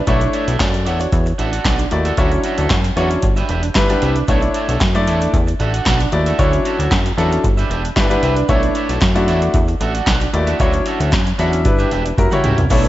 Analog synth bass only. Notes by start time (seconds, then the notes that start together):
0.07 B1
0.48 B1
0.60 F#2
0.86 E2
1.12 E2
1.39 A1
1.65 B1
1.92 D#2
2.18 D2
2.58 D2
2.70 F#2
2.96 E2
3.23 G1
3.49 E1
3.75 G1
4.02 C2
4.28 B1
4.68 B1
4.81 F#2
5.07 E2
5.34 E2
5.60 A1
5.86 B1
6.13 D#2
6.39 D2
6.79 D2
6.91 F#2
7.17 E2
7.44 G1
7.70 E1
7.97 G1
8.23 C2
8.49 B1
8.89 B1
9.02 F#2
9.28 E2
9.54 E2
9.81 A1
10.07 B1
10.33 D#2
10.60 D2
11.00 D2
11.13 F#2
11.39 E2
11.65 G1
11.92 E1
12.18 F#1
12.45 C#2
12.58 C2
12.70 B1